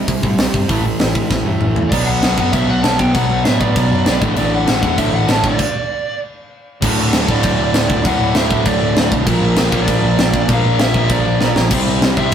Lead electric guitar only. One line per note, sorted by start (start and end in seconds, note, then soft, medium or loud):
1.90 2.07 D5 medium
2.05 2.37 F#5 loud
2.38 2.52 F#5 loud
2.53 2.69 E5 loud
2.69 2.84 F#5 medium
2.84 2.99 A5 loud
2.99 3.14 G5 loud
3.14 3.46 F#5 loud
3.44 3.61 E5 loud
3.61 3.75 D5 medium
3.76 4.19 D5 loud
4.37 4.53 D5 loud
4.54 4.81 F#5 loud
4.82 4.98 F#5 medium
4.98 5.14 E5 medium
5.15 5.30 F#5 medium
5.31 5.45 A5 loud
5.47 6.19 D5 medium
7.31 8.09 D5 loud
8.05 8.35 F#5 loud
8.36 8.67 E5 loud
8.66 9.09 D5 medium
9.76 10.47 D5 loud
10.53 10.79 F5 loud
10.80 11.08 E5 loud
11.11 11.53 D5 medium
12.18 12.34 E5 loud